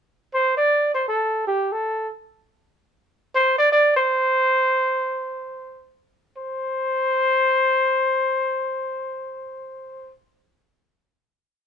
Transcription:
0, 0, Header, 1, 2, 480
1, 0, Start_track
1, 0, Tempo, 500000
1, 11195, End_track
2, 0, Start_track
2, 0, Title_t, "Trumpet"
2, 0, Program_c, 0, 56
2, 326, Note_on_c, 0, 72, 94
2, 534, Note_off_c, 0, 72, 0
2, 546, Note_on_c, 0, 74, 91
2, 881, Note_off_c, 0, 74, 0
2, 905, Note_on_c, 0, 72, 74
2, 1026, Note_off_c, 0, 72, 0
2, 1037, Note_on_c, 0, 69, 77
2, 1373, Note_off_c, 0, 69, 0
2, 1409, Note_on_c, 0, 67, 76
2, 1651, Note_on_c, 0, 69, 75
2, 1666, Note_off_c, 0, 67, 0
2, 2002, Note_off_c, 0, 69, 0
2, 3216, Note_on_c, 0, 72, 96
2, 3428, Note_off_c, 0, 72, 0
2, 3439, Note_on_c, 0, 74, 93
2, 3562, Note_off_c, 0, 74, 0
2, 3570, Note_on_c, 0, 74, 96
2, 3786, Note_off_c, 0, 74, 0
2, 3803, Note_on_c, 0, 72, 90
2, 5705, Note_off_c, 0, 72, 0
2, 6117, Note_on_c, 0, 72, 88
2, 9727, Note_off_c, 0, 72, 0
2, 11195, End_track
0, 0, End_of_file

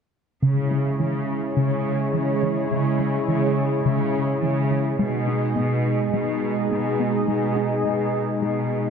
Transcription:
0, 0, Header, 1, 4, 480
1, 0, Start_track
1, 0, Tempo, 571429
1, 358, Time_signature, 4, 2, 24, 8
1, 7476, End_track
2, 0, Start_track
2, 0, Title_t, "Analog synth pad"
2, 0, Program_c, 0, 89
2, 363, Note_on_c, 0, 56, 49
2, 363, Note_on_c, 0, 64, 52
2, 363, Note_on_c, 0, 68, 51
2, 363, Note_on_c, 0, 73, 53
2, 4167, Note_off_c, 0, 56, 0
2, 4167, Note_off_c, 0, 64, 0
2, 4167, Note_off_c, 0, 68, 0
2, 4167, Note_off_c, 0, 73, 0
2, 4188, Note_on_c, 0, 56, 55
2, 4188, Note_on_c, 0, 68, 56
2, 4188, Note_on_c, 0, 75, 54
2, 4191, Note_on_c, 0, 63, 54
2, 7476, Note_off_c, 0, 56, 0
2, 7476, Note_off_c, 0, 63, 0
2, 7476, Note_off_c, 0, 68, 0
2, 7476, Note_off_c, 0, 75, 0
2, 7476, End_track
3, 0, Start_track
3, 0, Title_t, "Synth arpeggio sound"
3, 0, Program_c, 1, 84
3, 356, Note_on_c, 1, 49, 62
3, 501, Note_off_c, 1, 49, 0
3, 597, Note_on_c, 1, 56, 44
3, 741, Note_off_c, 1, 56, 0
3, 838, Note_on_c, 1, 52, 45
3, 982, Note_off_c, 1, 52, 0
3, 1316, Note_on_c, 1, 49, 57
3, 1460, Note_off_c, 1, 49, 0
3, 1796, Note_on_c, 1, 52, 42
3, 1940, Note_off_c, 1, 52, 0
3, 2038, Note_on_c, 1, 52, 44
3, 2182, Note_off_c, 1, 52, 0
3, 2278, Note_on_c, 1, 49, 59
3, 2422, Note_off_c, 1, 49, 0
3, 2516, Note_on_c, 1, 56, 45
3, 2661, Note_off_c, 1, 56, 0
3, 2758, Note_on_c, 1, 52, 45
3, 2902, Note_off_c, 1, 52, 0
3, 3238, Note_on_c, 1, 49, 60
3, 3382, Note_off_c, 1, 49, 0
3, 3715, Note_on_c, 1, 52, 45
3, 3860, Note_off_c, 1, 52, 0
3, 3957, Note_on_c, 1, 52, 46
3, 4101, Note_off_c, 1, 52, 0
3, 4193, Note_on_c, 1, 56, 64
3, 4339, Note_off_c, 1, 56, 0
3, 4432, Note_on_c, 1, 63, 49
3, 4578, Note_off_c, 1, 63, 0
3, 4670, Note_on_c, 1, 59, 48
3, 4817, Note_off_c, 1, 59, 0
3, 5154, Note_on_c, 1, 56, 58
3, 5300, Note_off_c, 1, 56, 0
3, 5638, Note_on_c, 1, 59, 45
3, 5782, Note_off_c, 1, 59, 0
3, 5877, Note_on_c, 1, 59, 44
3, 6021, Note_off_c, 1, 59, 0
3, 6114, Note_on_c, 1, 56, 60
3, 6259, Note_off_c, 1, 56, 0
3, 6352, Note_on_c, 1, 63, 45
3, 6498, Note_off_c, 1, 63, 0
3, 6598, Note_on_c, 1, 59, 45
3, 6742, Note_off_c, 1, 59, 0
3, 7075, Note_on_c, 1, 56, 58
3, 7220, Note_off_c, 1, 56, 0
3, 7476, End_track
4, 0, Start_track
4, 0, Title_t, "Cello section"
4, 0, Program_c, 2, 48
4, 360, Note_on_c, 2, 49, 32
4, 782, Note_off_c, 2, 49, 0
4, 834, Note_on_c, 2, 49, 31
4, 1259, Note_off_c, 2, 49, 0
4, 1318, Note_on_c, 2, 49, 34
4, 1741, Note_off_c, 2, 49, 0
4, 1797, Note_on_c, 2, 49, 35
4, 2221, Note_off_c, 2, 49, 0
4, 2275, Note_on_c, 2, 49, 40
4, 2700, Note_off_c, 2, 49, 0
4, 2755, Note_on_c, 2, 49, 41
4, 3180, Note_off_c, 2, 49, 0
4, 3235, Note_on_c, 2, 49, 42
4, 3660, Note_off_c, 2, 49, 0
4, 3714, Note_on_c, 2, 49, 46
4, 4139, Note_off_c, 2, 49, 0
4, 4196, Note_on_c, 2, 47, 46
4, 4620, Note_off_c, 2, 47, 0
4, 4675, Note_on_c, 2, 47, 47
4, 5100, Note_off_c, 2, 47, 0
4, 5157, Note_on_c, 2, 47, 44
4, 5581, Note_off_c, 2, 47, 0
4, 5643, Note_on_c, 2, 47, 40
4, 6064, Note_off_c, 2, 47, 0
4, 6119, Note_on_c, 2, 47, 37
4, 6542, Note_off_c, 2, 47, 0
4, 6595, Note_on_c, 2, 47, 32
4, 7020, Note_off_c, 2, 47, 0
4, 7072, Note_on_c, 2, 47, 30
4, 7476, Note_off_c, 2, 47, 0
4, 7476, End_track
0, 0, End_of_file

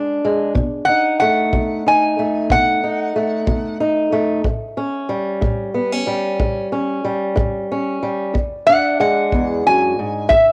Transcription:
0, 0, Header, 1, 4, 480
1, 0, Start_track
1, 0, Tempo, 650054
1, 411, Time_signature, 12, 3, 24, 8
1, 7768, End_track
2, 0, Start_track
2, 0, Title_t, "Resonator guitar played with a steel bar"
2, 0, Program_c, 0, 25
2, 627, Note_on_c, 0, 78, 86
2, 870, Note_off_c, 0, 78, 0
2, 884, Note_on_c, 0, 78, 76
2, 1350, Note_off_c, 0, 78, 0
2, 1386, Note_on_c, 0, 80, 80
2, 1841, Note_off_c, 0, 80, 0
2, 1857, Note_on_c, 0, 78, 100
2, 2781, Note_off_c, 0, 78, 0
2, 6398, Note_on_c, 0, 78, 104
2, 6635, Note_off_c, 0, 78, 0
2, 6648, Note_on_c, 0, 78, 73
2, 7114, Note_off_c, 0, 78, 0
2, 7138, Note_on_c, 0, 80, 85
2, 7597, Note_on_c, 0, 76, 92
2, 7600, Note_off_c, 0, 80, 0
2, 7768, Note_off_c, 0, 76, 0
2, 7768, End_track
3, 0, Start_track
3, 0, Title_t, "Steel-string acoustic guitar"
3, 0, Program_c, 1, 25
3, 0, Note_on_c, 1, 40, 76
3, 0, Note_on_c, 1, 56, 54
3, 0, Note_on_c, 1, 62, 58
3, 119, Note_off_c, 1, 40, 0
3, 173, Note_off_c, 1, 56, 0
3, 182, Note_on_c, 1, 56, 55
3, 383, Note_off_c, 1, 62, 0
3, 387, Note_off_c, 1, 56, 0
3, 404, Note_on_c, 1, 47, 75
3, 651, Note_on_c, 1, 63, 60
3, 838, Note_off_c, 1, 47, 0
3, 898, Note_on_c, 1, 57, 57
3, 1130, Note_on_c, 1, 47, 56
3, 1368, Note_off_c, 1, 63, 0
3, 1377, Note_on_c, 1, 63, 52
3, 1560, Note_off_c, 1, 47, 0
3, 1613, Note_off_c, 1, 57, 0
3, 1616, Note_on_c, 1, 57, 47
3, 1854, Note_on_c, 1, 47, 69
3, 2084, Note_off_c, 1, 63, 0
3, 2093, Note_on_c, 1, 63, 54
3, 2281, Note_off_c, 1, 47, 0
3, 2323, Note_off_c, 1, 57, 0
3, 2331, Note_on_c, 1, 57, 48
3, 2562, Note_on_c, 1, 47, 67
3, 2800, Note_off_c, 1, 63, 0
3, 2809, Note_on_c, 1, 63, 65
3, 2995, Note_off_c, 1, 47, 0
3, 3036, Note_off_c, 1, 57, 0
3, 3045, Note_on_c, 1, 57, 59
3, 3256, Note_off_c, 1, 57, 0
3, 3257, Note_off_c, 1, 63, 0
3, 3285, Note_on_c, 1, 45, 68
3, 3523, Note_on_c, 1, 61, 61
3, 3716, Note_off_c, 1, 45, 0
3, 3759, Note_on_c, 1, 55, 55
3, 3997, Note_on_c, 1, 45, 67
3, 4238, Note_off_c, 1, 61, 0
3, 4241, Note_on_c, 1, 59, 52
3, 4373, Note_off_c, 1, 59, 0
3, 4373, Note_on_c, 1, 61, 49
3, 4432, Note_off_c, 1, 45, 0
3, 4473, Note_off_c, 1, 55, 0
3, 4482, Note_on_c, 1, 55, 56
3, 4723, Note_on_c, 1, 45, 67
3, 4954, Note_off_c, 1, 61, 0
3, 4963, Note_on_c, 1, 61, 59
3, 5156, Note_off_c, 1, 45, 0
3, 5193, Note_off_c, 1, 55, 0
3, 5202, Note_on_c, 1, 55, 54
3, 5432, Note_on_c, 1, 45, 81
3, 5684, Note_off_c, 1, 61, 0
3, 5697, Note_on_c, 1, 61, 58
3, 5870, Note_off_c, 1, 45, 0
3, 5918, Note_off_c, 1, 55, 0
3, 5926, Note_on_c, 1, 55, 57
3, 6143, Note_off_c, 1, 61, 0
3, 6156, Note_on_c, 1, 40, 67
3, 6166, Note_off_c, 1, 55, 0
3, 6415, Note_on_c, 1, 62, 64
3, 6594, Note_off_c, 1, 40, 0
3, 6644, Note_on_c, 1, 56, 60
3, 6890, Note_on_c, 1, 40, 60
3, 7129, Note_off_c, 1, 40, 0
3, 7139, Note_on_c, 1, 42, 61
3, 7373, Note_off_c, 1, 42, 0
3, 7376, Note_on_c, 1, 44, 55
3, 7579, Note_off_c, 1, 56, 0
3, 7585, Note_off_c, 1, 62, 0
3, 7613, Note_off_c, 1, 44, 0
3, 7613, Note_on_c, 1, 45, 68
3, 7768, Note_off_c, 1, 45, 0
3, 7768, End_track
4, 0, Start_track
4, 0, Title_t, "Drums"
4, 409, Note_on_c, 9, 36, 60
4, 483, Note_off_c, 9, 36, 0
4, 1129, Note_on_c, 9, 36, 58
4, 1203, Note_off_c, 9, 36, 0
4, 1847, Note_on_c, 9, 36, 67
4, 1921, Note_off_c, 9, 36, 0
4, 2564, Note_on_c, 9, 36, 70
4, 2638, Note_off_c, 9, 36, 0
4, 3282, Note_on_c, 9, 36, 56
4, 3356, Note_off_c, 9, 36, 0
4, 4004, Note_on_c, 9, 36, 57
4, 4078, Note_off_c, 9, 36, 0
4, 4723, Note_on_c, 9, 36, 65
4, 4797, Note_off_c, 9, 36, 0
4, 5444, Note_on_c, 9, 36, 69
4, 5517, Note_off_c, 9, 36, 0
4, 6165, Note_on_c, 9, 36, 58
4, 6239, Note_off_c, 9, 36, 0
4, 6884, Note_on_c, 9, 36, 56
4, 6958, Note_off_c, 9, 36, 0
4, 7608, Note_on_c, 9, 36, 64
4, 7682, Note_off_c, 9, 36, 0
4, 7768, End_track
0, 0, End_of_file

